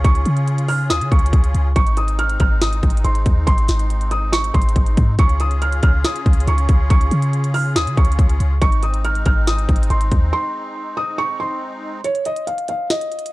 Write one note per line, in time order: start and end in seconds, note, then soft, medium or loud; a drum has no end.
0.00 1.72 C#3 medium
0.00 1.72 C#4 medium
0.00 1.72 F4 medium
0.00 1.72 G#4 medium
0.04 0.25 C#2 loud
0.04 0.65 C#6 loud
0.04 kick loud
0.04 closed hi-hat medium
0.15 closed hi-hat medium
0.26 0.92 C#3 loud
0.26 closed hi-hat medium
0.37 closed hi-hat medium
0.48 closed hi-hat medium
0.58 closed hi-hat medium
0.68 0.87 F6 medium
0.68 open hi-hat medium
0.90 1.02 D#2 loud
0.90 1.08 D#6 loud
0.90 snare loud
0.90 closed hi-hat medium
1.01 1.11 C#3 loud
1.01 closed hi-hat medium
1.12 1.32 C#2 loud
1.12 1.72 C#6 medium
1.12 kick loud
1.12 closed hi-hat soft
1.19 closed hi-hat medium
1.26 closed hi-hat medium
1.33 1.54 C#2 loud
1.33 kick loud
1.33 closed hi-hat medium
1.44 closed hi-hat medium
1.55 1.75 C#2 loud
1.55 closed hi-hat medium
1.76 2.38 G#1 loud
1.76 5.15 G#3 medium
1.76 5.15 C4 medium
1.76 5.15 D#4 medium
1.76 1.94 C#6 loud
1.76 kick loud
1.76 closed hi-hat medium
1.87 closed hi-hat medium
1.97 2.16 D#6 medium
1.97 closed hi-hat medium
2.08 closed hi-hat medium
2.19 2.37 F6 medium
2.19 closed hi-hat medium
2.29 closed hi-hat medium
2.40 2.81 G#1 loud
2.40 2.59 F6 medium
2.40 kick loud
2.40 closed hi-hat medium
2.62 3.02 D#6 medium
2.62 snare loud
2.62 closed hi-hat medium
2.73 closed hi-hat medium
2.83 3.04 G#1 loud
2.83 kick loud
2.83 closed hi-hat soft
2.90 closed hi-hat medium
2.97 closed hi-hat medium
3.04 3.25 G#1 loud
3.04 3.45 C6 medium
3.04 closed hi-hat medium
3.15 closed hi-hat medium
3.26 3.46 D#2 loud
3.26 kick medium
3.26 closed hi-hat medium
3.47 3.68 G#1 loud
3.47 4.07 C6 loud
3.47 kick loud
3.47 closed hi-hat medium
3.58 closed hi-hat medium
3.68 4.51 G#1 loud
3.68 snare loud
3.68 closed hi-hat medium
3.79 closed hi-hat medium
3.90 closed hi-hat medium
4.01 closed hi-hat medium
4.11 4.30 D#6 medium
4.11 closed hi-hat medium
4.33 4.51 C#6 loud
4.33 snare loud
4.33 closed hi-hat medium
4.44 closed hi-hat medium
4.54 4.75 G#1 loud
4.54 5.15 C6 medium
4.54 kick loud
4.54 closed hi-hat medium
4.62 closed hi-hat medium
4.69 closed hi-hat medium
4.76 4.96 G#1 loud
4.76 kick loud
4.76 closed hi-hat medium
4.86 closed hi-hat medium
4.97 5.18 G#2 loud
4.97 kick medium
4.97 closed hi-hat medium
5.19 5.80 C#2 loud
5.19 8.58 C#3 medium
5.19 8.58 C#4 medium
5.19 8.58 F4 medium
5.19 8.58 G#4 medium
5.19 5.37 C#6 loud
5.19 kick loud
5.19 closed hi-hat medium
5.29 closed hi-hat medium
5.40 5.59 D#6 medium
5.40 closed hi-hat medium
5.51 closed hi-hat medium
5.62 5.80 F6 medium
5.62 closed hi-hat medium
5.72 closed hi-hat medium
5.83 6.04 C#2 loud
5.83 6.02 F6 medium
5.83 kick loud
5.83 closed hi-hat medium
6.05 6.45 D#6 medium
6.05 snare loud
6.05 closed hi-hat medium
6.16 closed hi-hat medium
6.26 6.46 C#2 loud
6.26 kick loud
6.26 closed hi-hat soft
6.33 closed hi-hat medium
6.40 closed hi-hat medium
6.47 6.68 C#2 loud
6.47 6.88 C#6 medium
6.47 closed hi-hat medium
6.58 closed hi-hat medium
6.69 6.89 C#2 loud
6.69 kick loud
6.69 closed hi-hat medium
6.90 7.11 C#2 loud
6.90 7.51 C#6 medium
6.90 kick loud
6.90 closed hi-hat medium
7.01 closed hi-hat medium
7.11 7.77 C#3 loud
7.11 closed hi-hat medium
7.22 closed hi-hat medium
7.33 closed hi-hat medium
7.44 closed hi-hat medium
7.54 7.73 F6 medium
7.54 open hi-hat medium
7.76 7.88 D#2 loud
7.76 7.94 D#6 loud
7.76 snare loud
7.76 closed hi-hat medium
7.87 7.97 C#3 loud
7.87 closed hi-hat medium
7.97 8.18 C#2 loud
7.97 8.58 C#6 medium
7.97 kick loud
7.97 closed hi-hat soft
8.05 closed hi-hat medium
8.12 closed hi-hat medium
8.19 8.39 C#2 loud
8.19 kick loud
8.19 closed hi-hat medium
8.29 closed hi-hat medium
8.40 8.61 C#2 loud
8.40 closed hi-hat medium
8.62 9.23 G#1 loud
8.62 12.01 G#3 medium
8.62 12.01 C4 medium
8.62 12.01 D#4 medium
8.62 8.80 C#6 loud
8.62 kick loud
8.62 closed hi-hat medium
8.72 closed hi-hat medium
8.83 9.01 D#6 medium
8.83 closed hi-hat medium
8.94 closed hi-hat medium
9.05 9.23 F6 medium
9.05 closed hi-hat medium
9.15 closed hi-hat medium
9.26 9.67 G#1 loud
9.26 9.44 F6 medium
9.26 kick loud
9.26 closed hi-hat medium
9.47 9.88 D#6 medium
9.47 snare loud
9.47 closed hi-hat medium
9.59 closed hi-hat medium
9.69 9.89 G#1 loud
9.69 kick loud
9.69 closed hi-hat soft
9.76 closed hi-hat medium
9.83 closed hi-hat medium
9.90 10.11 G#1 loud
9.90 10.30 C6 medium
9.90 closed hi-hat medium
10.01 closed hi-hat medium
10.12 10.32 D#2 loud
10.12 kick loud
10.12 closed hi-hat medium
10.33 10.93 C6 loud
10.97 11.16 D#6 medium
11.18 11.37 C#6 loud
11.40 12.00 C6 medium
12.04 12.23 C#5 loud
12.04 closed hi-hat medium
12.15 closed hi-hat medium
12.25 12.44 D#5 medium
12.25 closed hi-hat medium
12.36 closed hi-hat medium
12.47 12.66 F5 medium
12.47 closed hi-hat medium
12.58 closed hi-hat medium
12.68 12.87 F5 medium
12.68 closed hi-hat medium
12.90 13.30 D#5 medium
12.90 snare loud
12.90 closed hi-hat medium
13.01 closed hi-hat medium
13.12 closed hi-hat soft
13.19 closed hi-hat medium
13.26 closed hi-hat medium